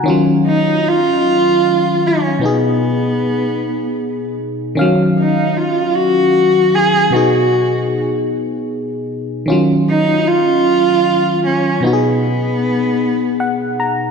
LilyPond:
<<
  \new Staff \with { instrumentName = "Cello" } { \time 6/8 \key ees \minor \tempo 4. = 51 r8 ees'8 f'4. des'8 | b2~ b8 r8 | r8 ees'8 f'8 ges'4 aes'8 | fis'4 r2 |
r8 ees'8 f'4. des'8 | b2~ b8 r8 | }
  \new Staff \with { instrumentName = "FM electric piano" } { \time 6/8 \key ees \minor << { r2. | r2. | r2. | r2. |
r2. | r2 fis''8 bes''8 | } \\ { <ees ges des' f'>2. | <b, b dis' gis'>2. | <ees ges des' f''>2. | <b, b dis' gis'>2. |
<ees ges des' f'>2. | <b, b dis' fis' gis'>2. | } >> }
>>